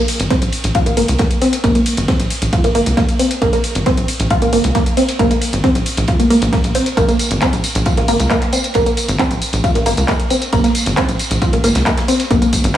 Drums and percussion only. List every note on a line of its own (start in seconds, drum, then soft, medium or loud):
0.08 open hi-hat loud
0.08 ride medium
0.20 closed hi-hat medium
0.30 kick loud
0.30 snare loud
0.30 closed hi-hat medium
0.30 ride medium
0.42 closed hi-hat medium
0.52 open hi-hat medium
0.52 ride medium
0.64 closed hi-hat medium
0.75 kick loud
0.75 closed hi-hat medium
0.75 ride medium
0.86 closed hi-hat medium
0.86 ride soft
0.97 open hi-hat loud
0.97 ride medium
1.08 closed hi-hat medium
1.18 kick loud
1.18 snare loud
1.18 closed hi-hat medium
1.18 ride medium
1.31 closed hi-hat medium
1.42 snare soft
1.42 open hi-hat medium
1.42 ride medium
1.53 closed hi-hat medium
1.64 kick loud
1.64 closed hi-hat medium
1.64 ride medium
1.75 closed hi-hat medium
1.86 open hi-hat loud
1.86 ride medium
1.97 closed hi-hat medium
2.08 kick loud
2.08 snare loud
2.08 closed hi-hat medium
2.08 ride medium
2.20 snare soft
2.20 closed hi-hat medium
2.30 open hi-hat medium
2.30 ride medium
2.42 closed hi-hat medium
2.53 kick loud
2.53 closed hi-hat medium
2.53 ride medium
2.64 closed hi-hat medium
2.75 open hi-hat loud
2.75 ride medium
2.86 closed hi-hat medium
2.97 kick loud
2.97 snare loud
2.97 closed hi-hat medium
2.97 ride medium
3.09 closed hi-hat medium
3.19 open hi-hat loud
3.19 ride medium
3.31 closed hi-hat medium
3.42 kick loud
3.42 closed hi-hat medium
3.42 ride medium
3.53 snare soft
3.53 closed hi-hat medium
3.64 open hi-hat loud
3.64 ride medium
3.75 closed hi-hat medium
3.86 kick loud
3.86 snare loud
3.86 closed hi-hat medium
3.86 ride medium
3.97 closed hi-hat medium
4.08 open hi-hat loud
4.08 ride medium
4.20 closed hi-hat medium
4.30 kick loud
4.30 closed hi-hat medium
4.30 ride medium
4.42 closed hi-hat medium
4.42 ride soft
4.52 open hi-hat loud
4.52 ride medium
4.64 closed hi-hat medium
4.75 kick loud
4.75 snare loud
4.75 closed hi-hat medium
4.75 ride medium
4.86 closed hi-hat medium
4.97 snare soft
4.97 open hi-hat loud
4.97 ride medium
5.09 closed hi-hat medium
5.19 kick loud
5.19 closed hi-hat medium
5.19 ride medium
5.31 closed hi-hat medium
5.41 open hi-hat loud
5.41 ride medium
5.53 closed hi-hat medium
5.64 kick loud
5.64 snare loud
5.64 closed hi-hat medium
5.64 ride medium
5.75 snare soft
5.75 closed hi-hat medium
5.86 open hi-hat medium
5.86 ride medium
5.97 closed hi-hat medium
6.08 kick loud
6.08 closed hi-hat medium
6.08 ride medium
6.20 closed hi-hat medium
6.30 open hi-hat loud
6.30 ride medium
6.42 closed hi-hat medium
6.53 kick loud
6.53 snare loud
6.53 closed hi-hat medium
6.53 ride medium
6.64 closed hi-hat medium
6.75 open hi-hat loud
6.75 ride medium
6.86 closed hi-hat medium
6.97 kick loud
6.97 closed hi-hat medium
6.97 ride medium
6.97 tambourine soft
7.08 snare soft
7.08 closed hi-hat medium
7.08 tambourine soft
7.19 open hi-hat loud
7.19 ride medium
7.19 tambourine medium
7.31 closed hi-hat medium
7.31 tambourine soft
7.42 kick loud
7.42 snare loud
7.42 clap loud
7.42 closed hi-hat medium
7.42 ride medium
7.42 tambourine soft
7.53 closed hi-hat medium
7.53 tambourine soft
7.64 open hi-hat medium
7.64 ride medium
7.64 tambourine medium
7.75 closed hi-hat medium
7.75 tambourine soft
7.85 kick loud
7.85 closed hi-hat medium
7.85 ride medium
7.85 tambourine soft
7.97 closed hi-hat medium
7.97 ride soft
8.08 open hi-hat loud
8.08 ride medium
8.08 tambourine medium
8.20 closed hi-hat medium
8.20 tambourine soft
8.30 kick loud
8.30 snare loud
8.30 clap loud
8.30 closed hi-hat medium
8.30 ride medium
8.30 tambourine soft
8.42 clap soft
8.42 closed hi-hat medium
8.52 snare soft
8.52 open hi-hat loud
8.52 ride medium
8.52 tambourine medium
8.64 closed hi-hat medium
8.64 tambourine soft
8.74 kick loud
8.74 closed hi-hat medium
8.74 ride medium
8.74 tambourine soft
8.86 closed hi-hat medium
8.86 tambourine soft
8.97 open hi-hat loud
8.97 ride medium
8.97 tambourine medium
9.08 closed hi-hat medium
9.08 tambourine soft
9.19 kick loud
9.19 snare loud
9.19 clap loud
9.19 closed hi-hat medium
9.19 ride medium
9.30 snare soft
9.30 closed hi-hat medium
9.30 tambourine soft
9.42 open hi-hat medium
9.42 ride medium
9.42 tambourine medium
9.53 closed hi-hat medium
9.53 tambourine soft
9.64 kick loud
9.64 closed hi-hat medium
9.64 ride medium
9.64 tambourine soft
9.75 closed hi-hat medium
9.86 open hi-hat loud
9.86 ride medium
9.86 tambourine medium
9.97 closed hi-hat medium
9.97 tambourine soft
10.08 kick loud
10.08 snare loud
10.08 clap loud
10.08 closed hi-hat medium
10.08 ride medium
10.08 tambourine soft
10.20 closed hi-hat medium
10.30 open hi-hat medium
10.30 ride medium
10.30 tambourine medium
10.42 closed hi-hat medium
10.42 tambourine soft
10.53 kick loud
10.53 closed hi-hat medium
10.53 ride medium
10.53 tambourine soft
10.64 snare soft
10.64 closed hi-hat medium
10.64 tambourine soft
10.75 open hi-hat loud
10.75 ride medium
10.75 tambourine medium
10.86 closed hi-hat medium
10.97 kick loud
10.97 snare loud
10.97 clap loud
10.97 closed hi-hat medium
10.97 ride loud
10.97 tambourine soft
11.09 closed hi-hat medium
11.09 tambourine soft
11.19 open hi-hat medium
11.19 ride medium
11.19 tambourine medium
11.31 closed hi-hat medium
11.31 tambourine soft
11.42 kick loud
11.42 closed hi-hat medium
11.42 ride medium
11.42 tambourine soft
11.53 closed hi-hat medium
11.53 ride soft
11.64 snare loud
11.64 open hi-hat loud
11.64 ride medium
11.64 tambourine medium
11.75 snare loud
11.75 closed hi-hat medium
11.75 ride medium
11.75 tambourine soft
11.86 kick loud
11.86 snare loud
11.86 clap loud
11.86 closed hi-hat medium
11.86 ride medium
11.86 tambourine soft
11.97 snare loud
11.97 clap soft
11.97 closed hi-hat medium
11.97 ride medium
12.08 open hi-hat medium
12.08 ride medium
12.08 tambourine medium
12.20 snare soft
12.20 closed hi-hat medium
12.20 tambourine soft
12.31 kick loud
12.31 closed hi-hat medium
12.31 ride medium
12.31 tambourine soft
12.42 closed hi-hat medium
12.42 tambourine soft
12.53 kick medium
12.53 open hi-hat loud
12.53 ride medium
12.53 tambourine medium
12.64 closed hi-hat medium
12.64 tambourine soft